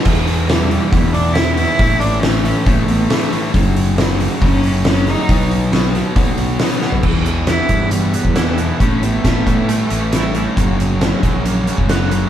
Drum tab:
CC |x---------------|----------------|----------------|----------------|
HH |o-o-o-o-o-o-o-o-|o-o-o-o-o-o-o-o-|o-o-o-o-o-o-o-o-|o-o-o-o-o-o-o---|
SD |----o-------o---|----o-------o---|----o-------o-o-|----o-------o-o-|
FT |----------------|----------------|----------------|---------------o|
BD |o-------o-------|o-------o-------|o-------o-------|o-------o-------|

CC |x---------------|----------------|----------------|
HH |--x-x-x-x-x-x-x-|x-x-x-x-x-x-x-x-|x-x-x-x-x-x-x-x-|
SD |----o-------o---|----o-------o---|----o-------o---|
FT |----------------|----------------|----------------|
BD |o-----o----o----|o---o-o---------|o-----o----o----|